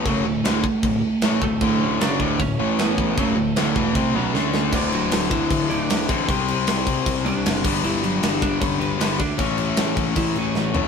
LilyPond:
<<
  \new Staff \with { instrumentName = "Lead electric guitar" } { \time 4/4 \key d \major \tempo 4 = 154 <a a'>2.~ <a a'>8 <a a'>8~ | <a a'>8 <cis' cis''>8 <d' d''>4 <cis' cis''>4 <b b'>4 | <a a'>2~ <a a'>8 <cis' cis''>4 <a a'>8 | <d' d''>8 <fis fis'>4 <e e'>4 <d' d''>4 <c' c''>8~ |
<c' c''>4 r4. <d' d''>4. | <e e'>8 <fis fis'>8 <e e'>8 <d' d''>8 <cis' cis''>8 <b b'>4 <d' d''>8 | <cis' cis''>2 <e e'>8 <cis' cis''>4. | }
  \new Staff \with { instrumentName = "Overdriven electric guitar" } { \clef bass \time 4/4 \key d \major r1 | <d, a, d>4 <fis, cis fis>8 <d, a, d>8 <d, a,>8 <a, e a>4. | <fis, cis fis>8 <d, a,>8 <d, a, d>8 <e, b, e>8 <c g c'>8 <b, fis b>8 <d a d'>4 | r1 |
r1 | r1 | r1 | }
  \new Staff \with { instrumentName = "Distorted electric guitar" } { \clef bass \time 4/4 \key d \major <fis, cis fis>8 <d, a,>8 <d, a, d>8 r8 <d, a,>8 r8 <a, e a>8 <d, a,>8 | <d, a, d>4 <fis, cis fis>8 <d, a, d>8 <d, a,>8 <a, e a>4. | <fis, cis fis>8 <d, a,>8 <d, a, d>8 <e, b, e>8 <c g c'>8 <b, fis b>8 <d a d'>4 | <d, a, d>2.~ <d, a, d>8 <d, a, d>8 |
<c g c'>2.~ <c g c'>8 <g, d g>8~ | <g, d g>2. <g, d g>8 r8 | <a, e a>2.~ <a, e a>8 <a, e a>8 | }
  \new Staff \with { instrumentName = "Picked electric bass" } { \clef bass \time 4/4 \key d \major fis,,8 d,,8 d,,8 r8 d,,8 r8 a,,8 d,,8 | d,,4 fis,,8 d,,8 d,,8 a,,4. | fis,,8 d,,8 d,,8 e,,8 c,8 b,,8 d,4 | d,,4 d,,8 d,,8 d,,8 d,,8 d,,8 a,,8 |
c,4 c,8 c,8 c,8 c,8 fis,,8 g,,8 | g,,4 g,,8 g,,8 g,,8 g,,8 g,,8 d,8 | a,,4 a,,8 a,,8 a,,8 a,,8 a,,8 e,8 | }
  \new DrumStaff \with { instrumentName = "Drums" } \drummode { \time 4/4 <cymc bd>4 <cymc sn>8 bd8 <cymc bd>4 <cymc sn>8 bd8 | <cymc bd>4 <cymc sn>8 bd8 <cymc bd>4 <cymc sn>8 bd8 | <cymc bd>4 <cymc sn>8 bd8 <cymc bd>4 sn8 sn8 | <cymc bd>8 cymc8 <cymc sn>8 <cymc bd>8 <cymc bd>8 cymc8 <cymc sn>8 <cymc bd>8 |
<cymc bd>8 cymc8 <cymc sn>8 <cymc bd>8 <cymc bd>8 cymc8 <cymc sn>8 <cymc bd>8 | cymc8 cymc8 <cymc sn>8 <cymc bd>8 <cymc bd>8 cymc8 <cymc sn>8 <cymc bd>8 | <cymc bd>8 cymc8 <cymc sn>8 <cymc bd>8 <cymc bd>8 cymc8 sn8 tomfh8 | }
>>